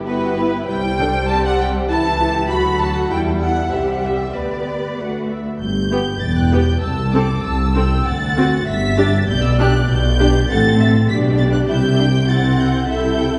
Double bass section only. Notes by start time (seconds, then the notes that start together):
Already playing: G1
0.68 C2
1.89 C#2
2.50 D2
3.10 E2
3.71 C2
4.34 D2
4.97 D2
5.60 G1
6.21 E1
6.82 C2
7.44 C2
8.07 D2
8.67 G1
9.28 B1
9.88 B1
10.49 A1
11.09 B1
11.69 C2
12.90 C2